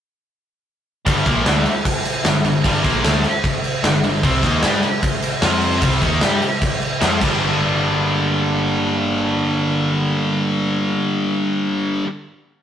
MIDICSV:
0, 0, Header, 1, 4, 480
1, 0, Start_track
1, 0, Key_signature, -2, "minor"
1, 0, Tempo, 396563
1, 1289, Time_signature, 4, 2, 24, 8
1, 15283, End_track
2, 0, Start_track
2, 0, Title_t, "Overdriven electric guitar"
2, 0, Program_c, 0, 29
2, 1277, Note_on_c, 0, 43, 84
2, 1286, Note_on_c, 0, 50, 84
2, 1291, Note_on_c, 0, 55, 102
2, 1515, Note_off_c, 0, 43, 0
2, 1520, Note_off_c, 0, 50, 0
2, 1522, Note_off_c, 0, 55, 0
2, 1526, Note_on_c, 0, 46, 101
2, 1530, Note_on_c, 0, 53, 93
2, 1537, Note_on_c, 0, 58, 98
2, 1746, Note_off_c, 0, 46, 0
2, 1751, Note_on_c, 0, 50, 75
2, 1754, Note_off_c, 0, 53, 0
2, 1756, Note_off_c, 0, 58, 0
2, 1758, Note_on_c, 0, 57, 89
2, 1761, Note_on_c, 0, 62, 90
2, 1992, Note_off_c, 0, 50, 0
2, 1995, Note_off_c, 0, 57, 0
2, 1997, Note_off_c, 0, 62, 0
2, 2703, Note_on_c, 0, 43, 71
2, 2710, Note_on_c, 0, 50, 70
2, 2906, Note_off_c, 0, 43, 0
2, 2910, Note_off_c, 0, 50, 0
2, 2947, Note_on_c, 0, 43, 68
2, 2952, Note_on_c, 0, 50, 75
2, 3148, Note_off_c, 0, 43, 0
2, 3151, Note_off_c, 0, 50, 0
2, 3194, Note_on_c, 0, 43, 94
2, 3195, Note_on_c, 0, 50, 91
2, 3203, Note_on_c, 0, 55, 102
2, 3413, Note_off_c, 0, 50, 0
2, 3418, Note_on_c, 0, 46, 90
2, 3422, Note_off_c, 0, 55, 0
2, 3427, Note_on_c, 0, 53, 108
2, 3431, Note_on_c, 0, 58, 105
2, 3432, Note_off_c, 0, 43, 0
2, 3664, Note_off_c, 0, 46, 0
2, 3668, Note_on_c, 0, 50, 88
2, 3669, Note_off_c, 0, 53, 0
2, 3671, Note_off_c, 0, 58, 0
2, 3679, Note_on_c, 0, 57, 93
2, 3686, Note_on_c, 0, 62, 105
2, 3909, Note_off_c, 0, 50, 0
2, 3915, Note_off_c, 0, 57, 0
2, 3918, Note_off_c, 0, 62, 0
2, 4636, Note_on_c, 0, 43, 65
2, 4646, Note_on_c, 0, 50, 83
2, 4832, Note_off_c, 0, 43, 0
2, 4837, Note_off_c, 0, 50, 0
2, 4881, Note_on_c, 0, 43, 56
2, 4890, Note_on_c, 0, 50, 67
2, 5075, Note_off_c, 0, 43, 0
2, 5080, Note_off_c, 0, 50, 0
2, 5126, Note_on_c, 0, 48, 95
2, 5133, Note_on_c, 0, 55, 93
2, 5140, Note_on_c, 0, 60, 103
2, 5358, Note_off_c, 0, 48, 0
2, 5362, Note_off_c, 0, 55, 0
2, 5366, Note_off_c, 0, 60, 0
2, 5369, Note_on_c, 0, 51, 108
2, 5379, Note_on_c, 0, 58, 102
2, 5380, Note_on_c, 0, 63, 101
2, 5586, Note_off_c, 0, 58, 0
2, 5590, Note_on_c, 0, 55, 90
2, 5596, Note_off_c, 0, 63, 0
2, 5600, Note_off_c, 0, 51, 0
2, 5601, Note_on_c, 0, 62, 92
2, 5603, Note_on_c, 0, 67, 101
2, 5831, Note_off_c, 0, 55, 0
2, 5837, Note_off_c, 0, 62, 0
2, 5838, Note_off_c, 0, 67, 0
2, 6556, Note_on_c, 0, 53, 103
2, 6566, Note_on_c, 0, 60, 101
2, 6570, Note_on_c, 0, 65, 93
2, 7034, Note_off_c, 0, 53, 0
2, 7039, Note_on_c, 0, 48, 95
2, 7040, Note_off_c, 0, 60, 0
2, 7042, Note_off_c, 0, 65, 0
2, 7050, Note_on_c, 0, 55, 99
2, 7053, Note_on_c, 0, 60, 100
2, 7277, Note_off_c, 0, 48, 0
2, 7282, Note_off_c, 0, 55, 0
2, 7284, Note_off_c, 0, 60, 0
2, 7286, Note_on_c, 0, 51, 99
2, 7296, Note_on_c, 0, 58, 93
2, 7302, Note_on_c, 0, 63, 99
2, 7518, Note_off_c, 0, 58, 0
2, 7521, Note_off_c, 0, 51, 0
2, 7523, Note_on_c, 0, 55, 82
2, 7524, Note_off_c, 0, 63, 0
2, 7529, Note_on_c, 0, 62, 87
2, 7539, Note_on_c, 0, 67, 98
2, 7759, Note_off_c, 0, 55, 0
2, 7762, Note_off_c, 0, 62, 0
2, 7767, Note_off_c, 0, 67, 0
2, 8488, Note_on_c, 0, 53, 90
2, 8498, Note_on_c, 0, 60, 96
2, 8504, Note_on_c, 0, 65, 95
2, 8717, Note_on_c, 0, 43, 90
2, 8725, Note_off_c, 0, 53, 0
2, 8730, Note_on_c, 0, 50, 96
2, 8735, Note_off_c, 0, 60, 0
2, 8738, Note_off_c, 0, 65, 0
2, 8743, Note_on_c, 0, 55, 96
2, 8754, Note_on_c, 0, 58, 101
2, 8768, Note_on_c, 0, 62, 108
2, 14565, Note_off_c, 0, 43, 0
2, 14577, Note_off_c, 0, 50, 0
2, 14591, Note_off_c, 0, 55, 0
2, 14602, Note_off_c, 0, 58, 0
2, 14616, Note_off_c, 0, 62, 0
2, 15283, End_track
3, 0, Start_track
3, 0, Title_t, "Picked electric bass"
3, 0, Program_c, 1, 34
3, 1291, Note_on_c, 1, 31, 90
3, 1513, Note_off_c, 1, 31, 0
3, 1523, Note_on_c, 1, 34, 97
3, 1748, Note_off_c, 1, 34, 0
3, 1763, Note_on_c, 1, 38, 100
3, 1988, Note_off_c, 1, 38, 0
3, 2725, Note_on_c, 1, 31, 71
3, 2948, Note_off_c, 1, 31, 0
3, 2962, Note_on_c, 1, 31, 72
3, 3187, Note_off_c, 1, 31, 0
3, 3200, Note_on_c, 1, 31, 96
3, 3426, Note_off_c, 1, 31, 0
3, 3439, Note_on_c, 1, 34, 88
3, 3665, Note_off_c, 1, 34, 0
3, 3684, Note_on_c, 1, 38, 98
3, 3907, Note_off_c, 1, 38, 0
3, 4644, Note_on_c, 1, 31, 78
3, 4868, Note_off_c, 1, 31, 0
3, 4887, Note_on_c, 1, 31, 84
3, 5110, Note_off_c, 1, 31, 0
3, 5122, Note_on_c, 1, 36, 95
3, 5347, Note_off_c, 1, 36, 0
3, 5362, Note_on_c, 1, 39, 100
3, 5587, Note_off_c, 1, 39, 0
3, 5598, Note_on_c, 1, 43, 104
3, 5825, Note_off_c, 1, 43, 0
3, 6560, Note_on_c, 1, 41, 91
3, 7011, Note_off_c, 1, 41, 0
3, 7039, Note_on_c, 1, 36, 94
3, 7267, Note_off_c, 1, 36, 0
3, 7285, Note_on_c, 1, 39, 95
3, 7510, Note_off_c, 1, 39, 0
3, 7525, Note_on_c, 1, 43, 97
3, 7751, Note_off_c, 1, 43, 0
3, 8494, Note_on_c, 1, 41, 86
3, 8716, Note_off_c, 1, 41, 0
3, 8728, Note_on_c, 1, 31, 92
3, 14528, Note_off_c, 1, 31, 0
3, 15283, End_track
4, 0, Start_track
4, 0, Title_t, "Drums"
4, 1289, Note_on_c, 9, 36, 105
4, 1290, Note_on_c, 9, 49, 82
4, 1410, Note_off_c, 9, 36, 0
4, 1411, Note_off_c, 9, 49, 0
4, 1524, Note_on_c, 9, 49, 58
4, 1525, Note_on_c, 9, 38, 30
4, 1527, Note_on_c, 9, 36, 105
4, 1645, Note_off_c, 9, 49, 0
4, 1646, Note_off_c, 9, 38, 0
4, 1648, Note_off_c, 9, 36, 0
4, 1768, Note_on_c, 9, 49, 79
4, 1769, Note_on_c, 9, 38, 114
4, 1889, Note_off_c, 9, 49, 0
4, 1890, Note_off_c, 9, 38, 0
4, 2005, Note_on_c, 9, 49, 62
4, 2126, Note_off_c, 9, 49, 0
4, 2242, Note_on_c, 9, 49, 87
4, 2243, Note_on_c, 9, 36, 97
4, 2363, Note_off_c, 9, 49, 0
4, 2365, Note_off_c, 9, 36, 0
4, 2484, Note_on_c, 9, 49, 63
4, 2605, Note_off_c, 9, 49, 0
4, 2721, Note_on_c, 9, 49, 79
4, 2722, Note_on_c, 9, 38, 114
4, 2842, Note_off_c, 9, 49, 0
4, 2843, Note_off_c, 9, 38, 0
4, 2960, Note_on_c, 9, 49, 62
4, 3081, Note_off_c, 9, 49, 0
4, 3199, Note_on_c, 9, 49, 79
4, 3201, Note_on_c, 9, 36, 106
4, 3320, Note_off_c, 9, 49, 0
4, 3322, Note_off_c, 9, 36, 0
4, 3443, Note_on_c, 9, 36, 104
4, 3446, Note_on_c, 9, 49, 59
4, 3447, Note_on_c, 9, 38, 33
4, 3565, Note_off_c, 9, 36, 0
4, 3567, Note_off_c, 9, 49, 0
4, 3568, Note_off_c, 9, 38, 0
4, 3685, Note_on_c, 9, 49, 78
4, 3686, Note_on_c, 9, 38, 104
4, 3806, Note_off_c, 9, 38, 0
4, 3806, Note_off_c, 9, 49, 0
4, 3806, Note_on_c, 9, 38, 28
4, 3922, Note_on_c, 9, 49, 57
4, 3927, Note_off_c, 9, 38, 0
4, 4043, Note_off_c, 9, 49, 0
4, 4160, Note_on_c, 9, 49, 78
4, 4163, Note_on_c, 9, 36, 102
4, 4281, Note_off_c, 9, 49, 0
4, 4284, Note_off_c, 9, 36, 0
4, 4406, Note_on_c, 9, 49, 52
4, 4527, Note_off_c, 9, 49, 0
4, 4647, Note_on_c, 9, 49, 74
4, 4648, Note_on_c, 9, 38, 114
4, 4768, Note_off_c, 9, 49, 0
4, 4769, Note_off_c, 9, 38, 0
4, 4884, Note_on_c, 9, 49, 62
4, 5005, Note_off_c, 9, 49, 0
4, 5123, Note_on_c, 9, 49, 81
4, 5125, Note_on_c, 9, 36, 105
4, 5244, Note_off_c, 9, 49, 0
4, 5246, Note_off_c, 9, 36, 0
4, 5363, Note_on_c, 9, 36, 96
4, 5363, Note_on_c, 9, 49, 60
4, 5364, Note_on_c, 9, 38, 31
4, 5484, Note_off_c, 9, 36, 0
4, 5484, Note_off_c, 9, 49, 0
4, 5485, Note_off_c, 9, 38, 0
4, 5599, Note_on_c, 9, 49, 74
4, 5601, Note_on_c, 9, 38, 111
4, 5720, Note_off_c, 9, 49, 0
4, 5722, Note_off_c, 9, 38, 0
4, 5725, Note_on_c, 9, 38, 31
4, 5843, Note_on_c, 9, 49, 59
4, 5846, Note_off_c, 9, 38, 0
4, 5964, Note_off_c, 9, 49, 0
4, 6086, Note_on_c, 9, 36, 111
4, 6087, Note_on_c, 9, 49, 79
4, 6207, Note_off_c, 9, 36, 0
4, 6208, Note_off_c, 9, 49, 0
4, 6324, Note_on_c, 9, 49, 65
4, 6445, Note_off_c, 9, 49, 0
4, 6560, Note_on_c, 9, 49, 82
4, 6561, Note_on_c, 9, 38, 109
4, 6681, Note_off_c, 9, 49, 0
4, 6682, Note_off_c, 9, 38, 0
4, 6797, Note_on_c, 9, 49, 67
4, 6918, Note_off_c, 9, 49, 0
4, 7039, Note_on_c, 9, 49, 85
4, 7043, Note_on_c, 9, 36, 115
4, 7160, Note_off_c, 9, 49, 0
4, 7164, Note_off_c, 9, 36, 0
4, 7280, Note_on_c, 9, 49, 65
4, 7285, Note_on_c, 9, 36, 101
4, 7401, Note_off_c, 9, 49, 0
4, 7406, Note_off_c, 9, 36, 0
4, 7519, Note_on_c, 9, 49, 76
4, 7521, Note_on_c, 9, 38, 104
4, 7641, Note_off_c, 9, 49, 0
4, 7642, Note_off_c, 9, 38, 0
4, 7768, Note_on_c, 9, 49, 61
4, 7889, Note_off_c, 9, 49, 0
4, 8010, Note_on_c, 9, 36, 112
4, 8013, Note_on_c, 9, 49, 82
4, 8131, Note_off_c, 9, 36, 0
4, 8134, Note_off_c, 9, 49, 0
4, 8251, Note_on_c, 9, 49, 58
4, 8372, Note_off_c, 9, 49, 0
4, 8490, Note_on_c, 9, 49, 74
4, 8492, Note_on_c, 9, 38, 103
4, 8612, Note_off_c, 9, 49, 0
4, 8613, Note_off_c, 9, 38, 0
4, 8731, Note_on_c, 9, 57, 86
4, 8732, Note_on_c, 9, 36, 102
4, 8852, Note_off_c, 9, 57, 0
4, 8853, Note_off_c, 9, 36, 0
4, 15283, End_track
0, 0, End_of_file